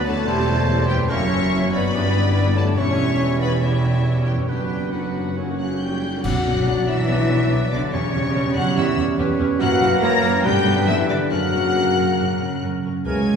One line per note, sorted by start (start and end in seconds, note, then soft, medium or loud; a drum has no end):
0.00 0.23 D2 medium
0.00 0.19 D3 medium
0.00 0.28 F#3 loud
0.00 0.22 B3 medium
0.00 0.28 D4 medium
0.00 0.24 F#4 medium
0.00 0.23 B4 loud
0.00 0.26 B4 medium
0.00 0.26 D5 medium
0.05 1.04 E2 medium
0.05 0.88 A3 loud
0.05 0.16 D4 medium
0.05 0.16 F#4 medium
0.05 0.88 A4 loud
0.05 0.90 C#5 loud
0.05 0.89 A5 loud
0.14 0.27 B3 medium
0.14 1.06 C4 medium
0.14 0.27 D4 medium
0.18 1.01 E4 medium
0.23 0.41 G3 medium
0.23 1.10 G3 loud
0.23 0.36 G3 medium
0.23 0.41 C4 medium
0.23 1.10 E4 loud
0.23 1.10 G4 medium
0.23 1.11 C5 loud
0.27 1.09 E1 loud
0.27 1.09 E2 loud
0.27 0.37 E4 medium
0.38 0.48 C4 medium
0.38 0.48 G4 medium
0.48 0.58 G3 medium
0.48 0.58 E4 medium
0.58 0.68 C4 medium
0.58 0.68 G4 medium
0.69 0.78 G3 medium
0.69 0.78 E4 medium
0.79 0.90 C4 medium
0.79 0.90 G4 medium
0.89 1.87 F#2 medium
0.89 1.10 G3 loud
0.89 1.00 G3 medium
0.89 1.00 E4 medium
0.89 1.11 G4 loud
0.89 1.11 B4 loud
0.89 0.97 G5 loud
0.97 1.89 A#3 medium
0.97 1.11 C4 medium
0.97 1.11 G4 medium
1.02 1.84 E4 medium
1.06 1.94 F#4 medium
1.06 1.51 A#4 loud
1.06 1.72 C#6 loud
1.10 1.93 F#1 loud
1.10 1.93 F#2 medium
1.10 1.25 E3 loud
1.10 1.93 F#3 loud
1.10 1.25 A#3 loud
1.10 1.73 C#4 loud
1.10 1.21 C#4 medium
1.10 1.92 E4 medium
1.10 1.21 E4 medium
1.10 1.73 C#5 loud
1.10 1.72 E5 loud
1.21 1.32 A#3 medium
1.21 1.32 F#4 medium
1.32 1.42 C#4 medium
1.32 1.42 E4 medium
1.42 1.53 A#3 medium
1.42 1.53 F#4 medium
1.52 1.62 C#4 medium
1.52 1.62 E4 medium
1.52 1.93 C#5 medium
1.63 1.74 A#3 medium
1.63 1.74 F#4 medium
1.73 2.71 G2 medium
1.73 2.55 B3 loud
1.73 1.84 C#4 medium
1.73 1.84 E4 medium
1.73 2.56 B4 loud
1.73 2.55 D5 loud
1.73 2.55 B5 loud
1.80 1.94 A#3 medium
1.80 2.73 D4 medium
1.80 1.94 F#4 medium
1.85 2.68 E4 medium
1.90 2.72 G4 medium
1.94 2.76 G1 loud
1.94 2.76 G2 loud
1.94 2.09 E3 medium
1.94 2.76 G3 loud
1.94 2.09 B3 medium
1.94 2.03 D4 medium
1.94 2.04 E4 medium
1.94 2.76 E4 medium
1.94 2.79 D5 loud
2.04 2.15 B3 medium
2.04 2.14 D4 medium
2.15 2.24 D4 medium
2.15 2.26 E4 medium
2.25 2.36 B3 medium
2.25 2.34 D4 medium
2.35 2.45 D4 medium
2.35 2.46 E4 medium
2.46 2.57 B3 medium
2.46 2.56 D4 medium
2.56 4.42 E2 medium
2.56 2.78 A3 loud
2.56 2.66 D4 medium
2.56 2.67 E4 medium
2.56 2.78 A4 loud
2.56 2.78 C#5 loud
2.56 2.65 A5 loud
2.64 2.78 B3 medium
2.64 4.44 C#4 medium
2.64 2.78 D4 medium
2.69 4.46 E4 medium
2.73 2.87 E3 medium
2.73 2.87 E4 medium
2.73 3.60 E4 medium
2.73 4.49 G4 medium
2.73 3.41 E5 loud
2.77 4.49 E1 loud
2.77 4.49 E2 medium
2.77 3.59 E3 loud
2.77 3.61 G3 medium
2.77 3.59 G3 loud
2.77 3.40 C#4 loud
2.77 3.41 C#5 loud
2.77 3.61 C#5 medium
2.77 3.40 C#6 loud
2.88 2.99 G3 medium
2.88 2.99 C#4 medium
2.98 3.09 E3 medium
2.98 3.09 E4 medium
3.09 3.20 G3 medium
3.09 3.20 C#4 medium
3.19 3.30 E3 medium
3.19 3.30 E4 medium
3.30 3.41 G3 medium
3.30 3.41 C#4 medium
3.40 3.52 E3 medium
3.40 3.62 B3 loud
3.40 3.52 E4 medium
3.40 3.62 B4 loud
3.40 3.62 D5 loud
3.40 3.62 B5 loud
3.52 3.62 G3 medium
3.52 3.62 C#4 medium
3.62 4.25 E3 medium
3.62 3.72 E3 medium
3.62 4.48 E3 medium
3.62 4.51 G3 medium
3.62 4.48 G3 medium
3.62 4.26 E4 loud
3.62 3.72 E4 medium
3.62 4.50 E4 medium
3.62 4.26 G4 medium
3.62 4.50 C#5 medium
3.62 4.25 E5 loud
3.73 3.84 G3 medium
3.73 3.84 C#4 medium
3.84 3.95 E3 medium
3.84 3.95 E4 medium
3.95 4.05 G3 medium
3.95 4.05 C#4 medium
4.05 4.15 E3 medium
4.05 4.15 E4 medium
4.16 4.27 G3 medium
4.16 4.27 C#4 medium
4.26 4.38 E3 medium
4.26 4.47 G3 medium
4.26 4.38 E4 medium
4.26 4.48 G4 medium
4.26 4.47 B4 medium
4.26 4.34 G5 medium
4.31 5.18 F#2 medium
4.35 4.49 G3 medium
4.35 5.31 B3 medium
4.35 4.49 C#4 medium
4.40 5.34 D4 medium
4.44 4.92 G3 medium
4.44 5.36 B4 medium
4.44 4.92 B4 medium
4.44 4.92 G5 medium
4.49 6.00 F#1 medium
4.49 5.56 F#2 medium
4.49 4.92 D3 medium
4.49 4.60 F#3 medium
4.49 4.93 B3 medium
4.49 4.92 B3 medium
4.49 4.93 D4 medium
4.49 4.60 D4 medium
4.49 4.92 G4 medium
4.49 4.92 B4 medium
4.60 4.71 B3 medium
4.60 4.71 F#4 medium
4.71 4.82 F#3 medium
4.71 4.82 D4 medium
4.82 4.93 B3 medium
4.82 4.93 F#4 medium
4.92 5.36 D3 medium
4.92 5.59 F#3 medium
4.92 5.03 F#3 medium
4.92 5.39 B3 medium
4.92 5.36 B3 medium
4.92 5.38 D4 medium
4.92 5.03 D4 medium
4.92 5.58 F#4 medium
4.92 5.35 B4 medium
4.92 5.57 B4 medium
4.92 5.58 F#5 medium
5.04 5.15 B3 medium
5.04 5.15 F#4 soft
5.15 5.26 F#3 medium
5.15 5.26 D4 medium
5.19 6.17 F#2 medium
5.23 6.19 A#3 medium
5.23 5.37 B3 soft
5.23 5.37 F#4 medium
5.28 6.21 C#4 medium
5.32 6.23 C#5 medium
5.37 6.03 C#3 medium
5.37 5.47 F#3 medium
5.37 6.03 A#3 medium
5.37 5.47 C#4 medium
5.37 6.02 C#4 medium
5.37 6.01 C#5 medium
5.48 5.59 A#3 medium
5.48 5.59 F#4 medium
5.58 5.79 F#3 medium
5.58 5.70 F#3 medium
5.58 5.70 C#4 medium
5.58 5.79 F#4 medium
5.58 5.64 F#5 medium
5.58 5.67 F#5 medium
5.58 5.79 F#6 medium
5.70 5.81 A#3 medium
5.70 5.81 F#4 medium
5.80 5.91 F#3 medium
5.80 6.23 G3 medium
5.80 5.91 C#4 medium
5.80 6.24 G4 medium
5.80 6.23 G5 medium
5.80 6.24 G6 medium
5.91 6.02 A#3 medium
5.91 6.02 F#4 medium
6.02 6.13 F#3 medium
6.02 6.13 C#4 medium
6.13 6.24 A#3 medium
6.13 6.24 F#4 medium
6.24 6.32 B1 loud
6.24 7.95 B2 medium
6.24 6.88 F#3 loud
6.24 7.89 F#3 loud
6.24 7.90 F#3 loud
6.24 6.32 B3 medium
6.24 6.32 D4 medium
6.24 7.90 D4 loud
6.24 6.86 F#4 loud
6.24 7.95 D5 medium
6.24 6.86 F#5 loud
6.24 6.64 F#5 loud
6.24 6.66 F#5 loud
6.24 6.86 F#6 loud
6.24 concert bass drum medium
6.24 crash medium
6.45 6.53 B1 medium
6.45 7.29 B3 medium
6.45 6.53 B3 medium
6.45 6.53 D4 medium
6.66 6.74 B1 medium
6.66 6.75 B3 medium
6.66 6.75 D4 medium
6.66 7.50 B4 medium
6.66 7.08 D5 loud
6.87 6.96 B1 medium
6.87 7.71 E3 loud
6.87 6.96 B3 medium
6.87 6.96 D4 medium
6.87 7.71 D4 medium
6.87 7.55 E4 loud
6.87 7.71 E5 loud
6.87 7.72 E6 loud
7.09 7.17 B1 medium
7.09 7.95 F#3 medium
7.09 7.17 B3 medium
7.09 7.17 D4 medium
7.09 7.91 B4 loud
7.30 7.38 B1 medium
7.30 7.95 B3 medium
7.30 7.38 B3 medium
7.30 7.38 D4 medium
7.51 7.59 B1 medium
7.51 7.60 B3 medium
7.51 7.59 D4 medium
7.51 7.95 B4 medium
7.72 7.80 B1 medium
7.72 7.93 D3 medium
7.72 7.80 B3 medium
7.72 7.92 D4 loud
7.72 7.80 D4 medium
7.72 7.95 D4 medium
7.72 7.93 D5 loud
7.72 7.94 D5 loud
7.72 7.80 D6 loud
7.93 8.01 E2 medium
7.93 8.76 E2 loud
7.93 8.56 C#3 loud
7.93 9.57 G3 loud
7.93 9.58 G3 loud
7.93 8.02 C#4 medium
7.93 8.56 C#4 loud
7.93 9.61 C#4 loud
7.93 8.02 G4 medium
7.93 8.55 C#5 loud
7.93 9.16 C#5 loud
7.93 8.55 C#5 loud
7.93 9.62 C#5 medium
7.93 8.55 C#6 loud
8.14 8.23 E2 medium
8.14 8.96 C#4 medium
8.14 8.23 C#4 medium
8.14 8.23 G4 medium
8.35 8.44 E2 medium
8.35 8.43 C#4 medium
8.35 9.17 G4 medium
8.35 8.43 G4 medium
8.56 8.65 E2 medium
8.56 8.77 F#3 loud
8.56 8.64 C#4 medium
8.56 9.38 E4 medium
8.56 8.65 F#4 loud
8.56 8.64 G4 medium
8.56 8.76 F#5 loud
8.56 8.77 F#5 loud
8.56 8.77 F#6 loud
8.77 9.62 E2 medium
8.77 8.85 E2 loud
8.77 8.98 E3 loud
8.77 8.85 C#4 medium
8.77 8.86 E4 medium
8.77 8.85 G4 medium
8.77 8.85 E5 medium
8.77 8.98 E5 loud
8.77 8.98 E6 loud
8.98 9.06 E2 loud
8.98 9.80 C#4 medium
8.98 9.06 C#4 medium
8.98 9.06 G4 medium
9.18 9.27 E2 loud
9.18 9.27 C#4 loud
9.18 11.33 G4 medium
9.18 9.27 G4 loud
9.18 9.62 B4 loud
9.39 9.48 E2 medium
9.39 9.47 C#4 medium
9.39 10.22 E4 medium
9.39 9.48 G4 medium
9.60 10.46 F#2 loud
9.60 9.69 F#2 loud
9.60 10.46 E3 loud
9.60 10.45 E3 loud
9.60 10.00 F#3 loud
9.60 9.68 A#3 loud
9.60 10.43 A#3 loud
9.60 9.68 E4 loud
9.60 9.99 F#4 loud
9.60 10.02 A#4 loud
9.60 10.46 A#4 loud
9.60 9.99 F#5 loud
9.60 10.00 F#5 loud
9.60 9.99 F#6 loud
9.81 9.89 F#2 loud
9.81 9.90 A#3 medium
9.81 10.46 C#4 medium
9.81 9.89 E4 loud
10.01 10.10 F#2 loud
10.01 10.11 A#3 loud
10.01 10.45 A#3 loud
10.01 10.11 E4 loud
10.01 10.46 A#4 medium
10.01 10.44 A#4 loud
10.01 10.46 C#5 loud
10.01 10.44 A#5 loud
10.01 10.43 A#6 loud
10.23 10.31 F#2 loud
10.23 10.31 A#3 medium
10.23 10.46 E4 medium
10.23 10.32 E4 loud
10.44 10.52 G2 loud
10.44 11.33 G2 loud
10.44 11.30 D3 loud
10.44 11.32 D3 loud
10.44 10.88 G3 loud
10.44 10.53 B3 loud
10.44 11.31 B3 loud
10.44 10.53 D4 loud
10.44 10.87 G4 loud
10.44 11.30 B4 loud
10.44 11.31 B4 loud
10.44 10.87 G5 loud
10.44 10.86 G6 loud
10.66 10.74 G2 loud
10.66 11.33 B3 medium
10.66 10.74 B3 medium
10.66 10.74 D4 medium
10.87 10.96 G2 loud
10.87 11.09 E3 loud
10.87 10.95 B3 loud
10.87 10.95 D4 medium
10.87 11.09 E4 loud
10.87 11.09 E5 loud
10.87 10.96 E6 loud
11.09 11.17 G2 medium
11.09 11.31 D3 loud
11.09 11.17 B3 medium
11.09 11.17 D4 medium
11.09 11.31 D4 medium
11.09 11.31 D5 loud
11.09 11.18 D5 medium
11.09 11.18 D6 medium
11.31 11.39 F#2 medium
11.31 13.08 F#2 medium
11.31 12.81 C#3 medium
11.31 12.85 C#3 loud
11.31 12.60 F#3 loud
11.31 12.82 A#3 loud
11.31 11.39 C#4 medium
11.31 12.63 F#4 loud
11.31 12.81 A#4 medium
11.31 11.39 A#4 medium
11.31 12.82 A#4 loud
11.31 12.63 F#5 loud
11.31 12.60 F#5 loud
11.31 12.60 F#6 loud
11.53 11.61 F#2 medium
11.53 11.61 C#4 medium
11.53 12.40 C#4 medium
11.53 11.61 A#4 medium
11.75 11.83 F#2 medium
11.75 11.83 C#4 medium
11.75 11.83 A#4 medium
11.75 12.62 A#4 medium
11.97 12.05 F#2 medium
11.97 12.05 C#4 medium
11.97 12.83 F#4 medium
11.97 12.05 A#4 medium
12.19 12.28 F#2 medium
12.19 13.05 C#3 medium
12.19 12.28 C#4 medium
12.19 12.27 A#4 medium
12.41 12.49 F#2 medium
12.41 13.36 C#4 medium
12.41 12.49 C#4 medium
12.41 12.49 A#4 medium
12.63 12.71 F#2 medium
12.63 12.71 C#4 medium
12.63 13.36 A#4 medium
12.63 12.71 A#4 medium
12.84 12.92 F#2 medium
12.84 12.92 C#4 medium
12.84 13.36 F#4 medium
12.84 12.92 A#4 medium
13.06 13.10 C#2 medium
13.06 13.36 C#3 medium
13.06 13.21 E3 medium
13.06 13.36 E3 medium
13.06 13.36 G#3 loud
13.06 13.10 A#3 medium
13.06 13.36 A#3 medium
13.06 13.36 G#4 loud
13.06 13.36 A#4 medium
13.06 13.21 A#4 medium
13.06 13.36 C#5 loud
13.06 13.36 G#5 loud
13.06 13.36 G#6 loud
13.28 13.36 E4 medium